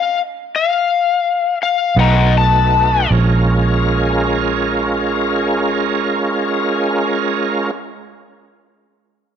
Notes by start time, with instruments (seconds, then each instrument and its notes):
Already playing: electric slide guitar F5
0.56 electric slide guitar F5
1.63 electric slide guitar F5
1.96 fingered electric bass B1, tonewheel organ A3 D#4 F#4 B4, electric slide guitar D#5 F#5
2.00 electric slide guitar A#5
2.38 electric slide guitar A5
3.10 fingered electric bass A#1, tonewheel organ G#3 C#4 F4 A#4